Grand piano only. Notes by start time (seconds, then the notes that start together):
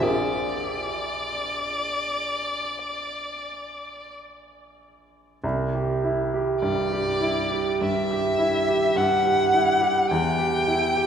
0.00 A#1 C4 F4 G#4 A#4
5.44 C2
5.75 G4
6.04 E4
6.34 G4
6.62 G2
6.92 G4
7.21 E4
7.52 G4
7.81 G2
8.11 G4
8.39 E4
8.68 G4
8.96 G2
9.25 G4
9.54 E4
9.81 G4
10.11 E2
10.39 G4
10.67 E4
10.96 G4